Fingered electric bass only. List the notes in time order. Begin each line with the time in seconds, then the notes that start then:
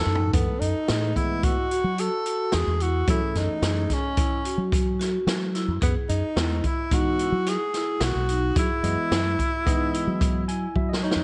0.06 F#2
0.34 F#2
0.61 F#2
0.89 A2
1.84 F#3
2.54 E2
2.67 E2
3.08 F#3
3.35 F#2
3.62 F#2
4.58 F#3
5.27 F#3
5.68 F#2
5.82 F#2
6.09 F#2
6.36 E2
7.32 F#3
8.01 B1
8.15 B1
8.56 F#3
8.84 F#2
9.11 F#2
10.07 F#3
10.76 F#3
11.16 F#2